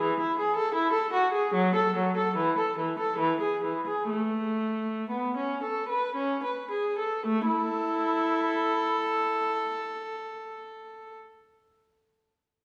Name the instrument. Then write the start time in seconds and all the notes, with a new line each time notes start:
viola
0.01 E3
0.20 E4
0.39 G#4
0.56 A4
0.75 E4
0.92 A4
1.13 F#4
1.32 G#4
1.54 F#3
1.75 A4
1.96 F#3
2.17 A4
2.36 E3
2.58 A4
2.79 E3
2.99 A4
3.18 E3
3.41 G#4
3.64 E3
3.87 G#4
4.10 A3
5.10 B3
5.37 C#4
5.63 A4
5.89 B4
6.16 C#4
6.44 B4
6.71 G#4
6.99 A4
7.26 A3
7.47 E4 A4